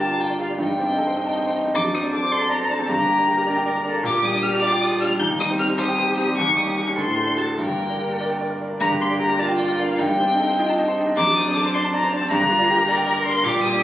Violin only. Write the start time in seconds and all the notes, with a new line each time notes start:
0.00 A5
0.21 G5
0.40 F5
0.60 G5
1.75 D6
1.94 D#6
2.14 D6
2.32 C6
2.50 A#5
2.71 A5
2.90 A#5
4.06 D6
4.25 D#6
4.43 F6
4.62 D6
4.82 D#6
5.01 F6
5.19 G6
5.40 D#6
5.59 F6
5.79 D#6
6.18 D#6
6.38 C#6
6.57 D#6
6.78 C#6
6.98 C6
7.38 A5
7.60 G5
8.80 A#5
9.01 C6
9.20 A#5
9.39 A5
9.58 G5
9.78 F5
9.98 G5
11.16 D6
11.36 D#6
11.56 D6
11.75 C6
11.95 A#5
12.13 A5
12.31 A#5
13.26 C6
13.45 D6
13.64 D#6